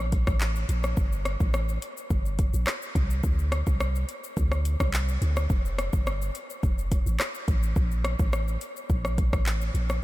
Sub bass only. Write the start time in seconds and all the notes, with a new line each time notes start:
Already playing: A#1
0.27 A1
0.69 A#1
0.97 G1
1.40 A1
2.10 G1
2.54 A#1
2.95 C2
3.24 D2
3.67 C2
4.37 D2
4.80 C2
5.22 D2
5.50 F1
5.93 G1
6.63 F1
7.06 A1
7.48 A1
7.76 A#1
8.19 A1
8.90 A#1
9.33 A1
9.74 A#1